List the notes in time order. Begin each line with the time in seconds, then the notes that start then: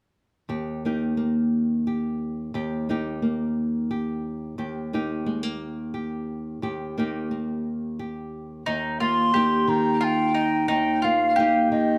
0.49 D#2 G4
0.85 A#3 D#4 G4
1.17 A#3
1.87 G4
2.54 D#2 G4
2.89 A#3 D#4 G4
3.22 A#3
3.91 G4
4.58 D#2 G4
4.93 A#3 D#4 G4
5.26 G#3
5.43 A#3
5.94 G4
6.62 D#2 G4
6.98 A#3 D#4 G4
7.31 A#3
7.99 G4
8.66 D#2 D#4
9.00 A#3 F4 C6
9.34 A#3 D#4 G4
9.68 D#3 A#5
10.01 F4 G5
10.35 D#4
10.68 D#2 D#4 G5
11.02 A#3 F4 F5
11.36 A#3 D#4 G4
11.40 G4
11.72 D#3 D#5